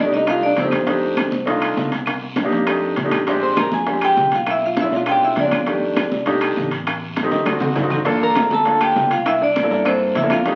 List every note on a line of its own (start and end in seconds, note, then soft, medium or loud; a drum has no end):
0.04 0.10 A3 medium
0.04 0.10 D4 medium
0.04 0.10 D#4 medium
0.04 0.10 G4 medium
0.12 0.54 C2 medium
0.12 0.23 A3 medium
0.12 0.23 D4 medium
0.12 0.23 D#4 medium
0.12 0.23 G4 medium
0.12 0.27 D#5 medium
0.12 high bongo soft
0.12 high conga soft
0.12 short guiro medium
0.17 0.28 D#4 medium
0.26 0.53 A3 medium
0.26 0.53 D4 medium
0.26 0.54 D#4 medium
0.26 0.54 G4 medium
0.26 0.42 F5 medium
0.26 high bongo medium
0.26 high conga soft
0.26 high timbale medium
0.26 long guiro medium
0.26 claves medium
0.31 0.43 F4 medium
0.43 0.51 D4 medium
0.43 0.50 D5 medium
0.43 high bongo soft
0.43 high conga soft
0.57 1.27 F2 medium
0.57 1.44 C5 medium
0.57 high bongo soft
0.57 low bongo medium
0.57 high conga medium
0.57 high timbale medium
0.57 low timbale medium
0.57 short guiro medium
0.61 0.80 A3 medium
0.61 1.45 C4 medium
0.61 0.80 D4 medium
0.65 0.80 D#4 medium
0.65 0.81 G4 medium
0.71 high bongo soft
0.71 high conga medium
0.71 high timbale medium
0.71 short guiro medium
0.71 claves medium
0.87 1.29 A3 medium
0.87 1.29 D4 medium
0.87 1.29 D#4 medium
0.87 1.30 G4 medium
0.87 high bongo medium
0.87 high conga soft
0.87 high timbale medium
0.87 long guiro medium
1.02 high conga soft
1.17 high bongo medium
1.17 high conga medium
1.17 high timbale medium
1.17 short guiro medium
1.17 claves medium
1.31 1.74 C2 medium
1.31 high bongo soft
1.31 high conga medium
1.31 short guiro medium
1.46 1.88 A3 medium
1.46 1.88 D4 medium
1.46 1.89 D#4 medium
1.46 1.89 F4 medium
1.46 high bongo medium
1.46 high conga soft
1.46 high timbale medium
1.46 long guiro medium
1.62 high bongo soft
1.62 high conga soft
1.62 high timbale medium
1.62 claves medium
1.77 2.46 C2 medium
1.77 high bongo soft
1.77 low bongo medium
1.77 high conga medium
1.77 short guiro medium
1.92 high bongo soft
1.92 high conga medium
1.92 high timbale medium
1.92 short guiro medium
2.06 high bongo medium
2.06 high conga soft
2.06 high timbale medium
2.06 long guiro medium
2.06 claves medium
2.22 high conga soft
2.36 high bongo medium
2.36 high conga medium
2.36 high timbale medium
2.36 short guiro medium
2.44 2.50 A#3 medium
2.44 2.50 D4 medium
2.44 2.50 D#4 medium
2.44 2.50 G4 medium
2.51 2.94 F2 medium
2.51 2.62 A#3 medium
2.51 2.63 D4 medium
2.51 2.63 D#4 medium
2.51 2.63 G4 medium
2.51 high bongo soft
2.51 high conga soft
2.51 short guiro medium
2.66 2.93 A3 medium
2.66 2.94 D4 medium
2.66 2.94 D#4 medium
2.66 2.94 G4 medium
2.66 high bongo medium
2.66 high conga soft
2.66 high timbale medium
2.66 long guiro medium
2.66 claves medium
2.82 high bongo soft
2.82 high conga soft
2.96 3.66 A#1 medium
2.96 high bongo soft
2.96 low bongo medium
2.96 high conga medium
2.96 high timbale medium
2.96 short guiro medium
3.04 3.20 A3 medium
3.04 3.20 D4 medium
3.04 3.20 D#4 medium
3.04 3.21 G4 medium
3.11 high bongo soft
3.11 high conga medium
3.11 high timbale medium
3.11 short guiro medium
3.11 claves medium
3.27 3.69 G#3 medium
3.27 3.69 C4 medium
3.27 3.70 D4 medium
3.27 3.70 G4 loud
3.27 high bongo medium
3.27 high conga soft
3.27 high timbale medium
3.27 long guiro medium
3.43 3.56 C5 medium
3.43 3.58 C6 medium
3.43 high conga soft
3.57 3.72 A#4 medium
3.57 3.74 A#5 medium
3.57 high bongo medium
3.57 high conga medium
3.57 high timbale medium
3.57 short guiro medium
3.57 claves medium
3.72 4.14 F2 medium
3.72 4.01 G#4 medium
3.72 4.04 G#5 medium
3.72 high bongo soft
3.72 high conga medium
3.72 short guiro medium
3.86 4.29 G#3 medium
3.86 4.29 C4 medium
3.86 4.29 D4 medium
3.86 4.30 G4 medium
3.86 high bongo medium
3.86 high conga soft
3.86 high timbale medium
3.86 long guiro medium
4.01 4.31 G4 medium
4.01 4.34 G5 medium
4.01 high bongo soft
4.01 high conga soft
4.01 high timbale medium
4.01 claves medium
4.17 4.86 B1 medium
4.17 high bongo soft
4.17 low bongo medium
4.17 high conga medium
4.17 short guiro medium
4.32 4.40 F4 medium
4.32 4.41 F5 medium
4.32 high bongo soft
4.32 high conga medium
4.32 high timbale medium
4.32 short guiro medium
4.46 4.63 E4 medium
4.46 high bongo medium
4.46 high conga soft
4.46 high timbale medium
4.46 long guiro medium
4.46 claves medium
4.51 4.64 E5 medium
4.62 4.78 F4 medium
4.62 4.79 F5 medium
4.62 high conga soft
4.77 4.94 E5 medium
4.77 high bongo medium
4.77 high conga medium
4.77 high timbale medium
4.77 short guiro medium
4.82 4.89 G#3 medium
4.82 4.89 C#4 medium
4.82 4.89 D4 medium
4.82 4.93 E4 medium
4.82 4.90 F4 medium
4.91 5.33 B2 medium
4.91 5.02 G#3 medium
4.91 5.03 C#4 medium
4.91 5.03 D4 medium
4.91 5.03 F4 medium
4.91 high bongo soft
4.91 high conga soft
4.91 short guiro medium
4.96 5.01 F4 medium
4.96 5.02 F5 medium
5.06 5.33 G#3 medium
5.06 5.33 C#4 medium
5.06 5.34 D4 medium
5.06 5.34 F4 medium
5.06 5.23 G5 medium
5.06 high bongo medium
5.06 high conga soft
5.06 high timbale medium
5.06 long guiro medium
5.06 claves medium
5.11 5.23 G4 medium
5.22 5.37 E4 medium
5.22 5.37 E5 medium
5.22 high bongo soft
5.22 high conga soft
5.36 6.06 F2 medium
5.36 6.24 D5 medium
5.36 high bongo soft
5.36 low bongo medium
5.36 high conga medium
5.36 high timbale medium
5.36 short guiro medium
5.40 5.60 G#3 medium
5.40 6.24 D4 medium
5.45 5.60 C#4 medium
5.45 5.60 D4 medium
5.45 5.61 F4 medium
5.51 high bongo soft
5.51 high conga medium
5.51 high timbale medium
5.51 short guiro medium
5.51 claves medium
5.66 6.09 D#3 medium
5.66 6.09 A3 medium
5.66 6.09 D4 medium
5.66 6.09 G4 medium
5.66 high bongo medium
5.66 high conga soft
5.66 high timbale medium
5.66 long guiro medium
5.82 high conga soft
5.96 high bongo medium
5.96 high conga medium
5.96 high timbale medium
5.96 short guiro medium
5.96 claves medium
6.11 6.53 C2 medium
6.11 high bongo soft
6.11 high conga medium
6.11 short guiro medium
6.25 6.68 A3 medium
6.25 6.68 D4 medium
6.25 6.68 D#4 medium
6.25 6.69 G4 loud
6.25 high bongo medium
6.25 high conga soft
6.25 high timbale medium
6.25 long guiro medium
6.41 high bongo soft
6.41 high conga soft
6.41 high timbale medium
6.41 claves medium
6.57 7.26 A1 medium
6.57 high bongo soft
6.57 low bongo medium
6.57 high conga medium
6.57 short guiro medium
6.71 high bongo soft
6.71 high timbale medium
6.71 short guiro medium
6.87 high bongo medium
6.87 high conga soft
6.87 high timbale medium
6.87 long guiro medium
6.87 claves medium
7.02 high conga soft
7.16 high bongo medium
7.16 high conga medium
7.16 high timbale medium
7.16 short guiro medium
7.23 7.29 A3 medium
7.23 7.29 C4 medium
7.23 7.29 D#4 medium
7.23 7.29 G4 medium
7.30 7.73 D2 medium
7.30 7.41 A3 medium
7.30 7.42 C4 medium
7.30 7.42 D#4 medium
7.30 7.42 G4 medium
7.30 7.45 D#5 medium
7.30 high bongo medium
7.30 high conga soft
7.30 short guiro medium
7.46 7.72 A3 medium
7.46 7.73 C4 medium
7.46 7.73 D#4 medium
7.46 7.73 F#4 medium
7.46 7.60 D5 medium
7.46 high bongo medium
7.46 high conga medium
7.46 high timbale medium
7.46 long guiro medium
7.46 claves medium
7.60 7.75 F#5 medium
7.60 low bongo medium
7.60 low conga medium
7.60 high timbale medium
7.76 8.46 G1 medium
7.76 8.04 A5 medium
7.76 low bongo medium
7.76 low timbale medium
7.76 short guiro medium
7.81 7.98 A3 medium
7.81 7.99 C4 medium
7.81 7.99 D#4 medium
7.81 7.99 F#4 medium
7.90 low bongo medium
7.90 low conga medium
7.90 low timbale medium
7.90 short guiro medium
7.90 claves medium
8.05 8.47 A#3 medium
8.05 8.48 D4 medium
8.05 8.48 F4 medium
8.05 8.48 A4 loud
8.05 high bongo medium
8.05 high conga soft
8.05 high timbale medium
8.05 long guiro medium
8.21 8.50 A#4 medium
8.21 8.53 A#5 medium
8.21 high conga soft
8.35 high bongo medium
8.35 high conga medium
8.35 high timbale medium
8.35 short guiro medium
8.35 claves medium
8.50 8.92 D2 medium
8.50 8.80 A4 medium
8.50 high bongo soft
8.50 high conga medium
8.50 short guiro medium
8.54 8.81 A5 medium
8.65 9.07 A#3 medium
8.65 9.08 D4 medium
8.65 9.08 F4 medium
8.65 9.08 A4 medium
8.65 high bongo medium
8.65 high conga soft
8.65 high timbale medium
8.81 9.09 G4 medium
8.81 9.13 G5 medium
8.81 high bongo soft
8.81 high conga soft
8.81 high timbale medium
8.81 claves medium
8.95 9.65 C2 medium
8.95 high bongo soft
8.95 low bongo medium
8.95 high conga medium
8.95 short guiro medium
9.11 9.25 F4 medium
9.11 9.26 F5 medium
9.11 high bongo soft
9.11 high timbale medium
9.11 short guiro medium
9.26 9.40 E4 medium
9.26 9.41 E5 loud
9.26 high bongo medium
9.26 high conga soft
9.26 high timbale medium
9.26 long guiro medium
9.26 claves medium
9.41 9.83 D4 medium
9.41 9.88 D5 medium
9.41 high conga soft
9.55 high bongo medium
9.55 high conga medium
9.55 high timbale medium
9.55 short guiro medium
9.63 9.68 A#3 medium
9.63 9.68 D4 medium
9.63 9.69 E4 medium
9.63 9.69 A4 medium
9.70 10.12 G2 medium
9.70 9.81 A#3 medium
9.70 9.81 D4 medium
9.70 9.81 E4 medium
9.70 9.82 A4 medium
9.70 high bongo soft
9.70 high conga soft
9.70 short guiro medium
9.85 10.12 A#3 medium
9.85 10.14 C4 medium
9.85 10.12 D4 medium
9.85 10.12 E4 medium
9.85 10.12 A4 medium
9.85 10.14 C5 medium
9.85 high bongo medium
9.85 high conga soft
9.85 high timbale medium
9.85 long guiro medium
9.85 claves medium
10.00 high bongo soft
10.00 high conga soft
10.15 10.55 F2 medium
10.15 10.21 E4 medium
10.15 10.24 E5 medium
10.15 high bongo soft
10.15 low bongo medium
10.15 high conga medium
10.15 high timbale medium
10.15 short guiro medium
10.23 10.38 A#3 medium
10.23 10.39 D4 medium
10.23 10.39 E4 medium
10.23 10.39 A4 medium
10.30 10.55 F4 medium
10.30 10.55 F5 medium
10.30 high bongo soft
10.30 high conga medium
10.30 high timbale medium
10.30 short guiro medium
10.30 claves medium
10.46 10.55 A3 medium
10.46 10.55 D4 medium
10.46 10.55 D#4 medium
10.46 10.55 G4 medium
10.46 high bongo medium
10.46 high conga soft
10.46 high timbale medium
10.46 long guiro medium